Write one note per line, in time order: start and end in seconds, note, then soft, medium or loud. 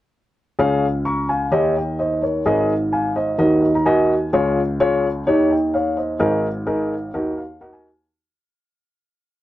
0.59 1.48 C#2 medium
0.59 1.48 C#3 medium
0.59 0.85 G#4 medium
0.59 0.85 C#5 medium
0.59 0.85 F5 medium
1.05 1.28 A#5 medium
1.05 1.27 C#6 medium
1.29 1.73 F5 medium
1.29 1.73 G#5 medium
1.51 2.41 D#2 medium
1.51 2.41 D#3 medium
1.51 1.78 G4 medium
1.51 1.75 C#5 medium
1.51 1.75 D#5 medium
1.76 1.98 D#5 soft
1.76 1.98 G5 medium
1.99 2.21 C5 medium
1.99 2.21 D#5 medium
2.22 2.44 A#4 soft
2.22 2.67 C#5 medium
2.46 3.35 G#1 medium
2.46 3.35 G#2 medium
2.46 2.72 G#4 medium
2.46 2.72 A#4 medium
2.46 2.72 D#5 medium
2.93 3.15 F5 medium
2.93 3.15 G#5 medium
3.16 3.60 C5 medium
3.16 3.37 D#5 medium
3.38 4.28 D#2 medium
3.38 4.28 D#3 medium
3.38 3.65 F#4 medium
3.38 3.65 A#4 medium
3.38 3.61 D#5 medium
3.63 3.73 D#5 medium
3.75 3.85 A#5 medium
3.86 4.12 F#4 medium
3.86 4.12 A#4 medium
3.86 4.12 D#5 medium
3.86 4.29 G#5 medium
4.33 5.23 C#2 medium
4.33 5.23 C#3 medium
4.33 4.59 F4 medium
4.33 4.59 G#4 medium
4.33 4.59 C#5 medium
4.80 5.06 F4 medium
4.80 5.06 G#4 medium
4.80 5.06 C#5 medium
5.27 6.16 D#2 medium
5.27 6.16 D#3 medium
5.27 5.53 D#4 medium
5.27 5.53 G4 medium
5.27 5.50 C#5 medium
5.51 5.73 D#5 soft
5.51 5.73 G5 soft
5.74 5.96 C#5 medium
5.74 5.96 F5 medium
5.97 6.41 C5 medium
5.97 6.41 D#5 medium
6.19 7.10 G#1 medium
6.19 7.10 G#2 medium
6.19 6.46 D#4 medium
6.19 6.46 G#4 medium
6.19 6.46 A#4 medium
6.66 6.93 D#4 medium
6.66 6.93 G#4 medium
6.66 6.93 A#4 medium
7.14 8.04 D#2 medium
7.14 8.04 D#3 medium
7.14 7.40 D#4 medium
7.14 7.40 F#4 medium
7.14 7.40 A#4 medium
7.37 7.59 F5 medium
7.61 7.87 D#4 medium
7.61 7.87 F#4 medium
7.61 7.87 A#4 medium
7.61 7.72 F#5 medium
7.73 8.05 G#5 medium